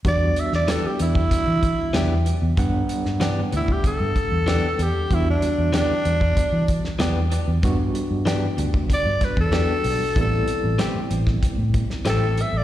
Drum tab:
HH |x-x-x-x-x-x-x-x-|x-x-x-x-x-x-x-x-|x-x-x-x-x-x-x-x-|x-x-x-x-x-x-x-o-|
SD |---oo-------o---|---oo-------o---|----o------oo---|----o-----o-o---|
BD |o------oo-o-----|o------oo-o-----|o------oo-o-----|o------oo-oo----|

HH |x-x-x-x-x-x-x-x-|
SD |----o--o---oo---|
BD |o------oo-o-----|